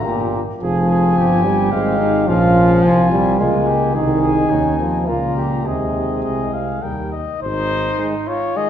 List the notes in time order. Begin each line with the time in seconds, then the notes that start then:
Already playing: A#5
0.04 G1 A#2 A#3 G4
0.61 F1 F3 C4 G#4 G#5
0.90 G#4
1.17 G1 G4
1.44 G3
1.71 G#1 G#3 C4 F5
1.99 D#4
2.27 A#1 F3 C#4 F4 F5
2.84 C2 C4 G#5
3.12 G3
3.38 C#2 G#3 A#3 F4 G#5
3.67 G4
3.95 C2 D#3 D#4 G#4 G#5
4.22 G#4
4.49 D#2 C#4 D#4
4.78 F3 C4
5.06 C#2 A#2 A#3 F4 A#5
5.36 G4
5.64 D#2 C3 G#3 G#4 D#5
6.24 C2 D#5
6.53 F5
6.82 D#2 G3 A#4 G5
7.12 D#5
7.41 G#1 D#4 C5
7.99 D#3 G#3
8.27 F4 C#5
8.55 D#3 G#3 G#4 D#5